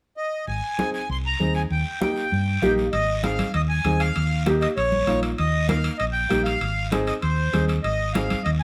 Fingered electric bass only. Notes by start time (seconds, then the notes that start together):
0.48 G#1
1.10 C2
1.40 D#2
1.71 D#2
2.32 G2
2.62 A#1
2.93 G#1
3.54 D#2
3.85 D#2
4.16 D#2
4.77 A#1
5.08 A#1
5.39 D#2
6.01 A#1
6.30 A#1
6.61 G#1
7.23 D#2
7.54 D#2
7.84 G#1
8.46 D#2